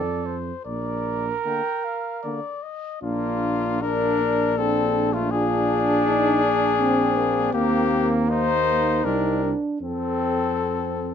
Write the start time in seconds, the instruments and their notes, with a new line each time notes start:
Already playing: tuba F2, trumpet A4 D5
0.26 trumpet C5
0.65 tuba A#1, trumpet A#4 D5
1.44 euphonium D3, french horn A#3, trumpet G5
1.85 trumpet F5
2.23 euphonium D3, french horn A#3, trumpet D5
2.63 trumpet D#5
3.02 tuba A#1, trumpet A#3 F4, french horn D4
3.82 euphonium A#3, french horn D4, trumpet D4 A#4
4.21 euphonium D4
4.58 trumpet C4 A4
5.13 trumpet A3 F4
5.31 french horn D4, trumpet D4 G#4, euphonium F4
6.06 euphonium D#4
6.43 euphonium D4
6.79 french horn C4, euphonium C4
7.16 euphonium A#3
7.53 tuba D#2, french horn A#3, trumpet A#3 G4, euphonium C4
8.30 euphonium A#3, trumpet D#4 C5
9.05 tuba C2, french horn C4, trumpet D4 A#4, euphonium D#4
9.43 euphonium D4
9.81 tuba F2, french horn C4, trumpet C4 A4, euphonium C4